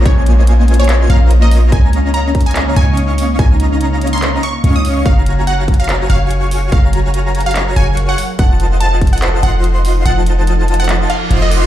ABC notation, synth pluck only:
X:1
M:4/4
L:1/16
Q:"Swing 16ths" 1/4=144
K:Fphr
V:1 name="Synth pluck"
d2 z4 z d2 z f2 z e2 z | a2 z2 b2 z a2 z a2 z4 | a2 z4 z c'2 z d'2 z e'2 z | f2 z2 g2 z f2 z f2 z4 |
f2 z4 z f2 z a2 z g2 z | g2 z2 =a2 z g2 z g2 z4 | g2 z4 z g2 z f2 z e2 z |]